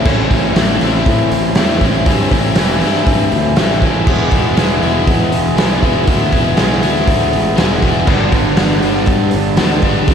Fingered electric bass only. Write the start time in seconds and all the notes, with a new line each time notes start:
0.06 A1
0.31 A1
0.56 A1
0.81 A1
1.06 A2
1.32 A1
1.58 E2
1.81 A1
2.07 G2
2.32 A1
2.57 E1
2.82 G2
3.07 G2
3.32 D2
3.56 A1
4.07 E1
4.32 E1
4.57 E1
4.83 E1
5.07 E2
5.32 E1
5.57 B1
5.83 E1
6.08 D2
6.33 E1
6.59 B1
6.84 D2
7.07 D2
7.35 A1
7.59 E1
8.08 G1
8.32 G1
8.60 G1
8.84 G1
9.08 G2
9.34 G1
9.59 D2
9.83 G1
10.08 F2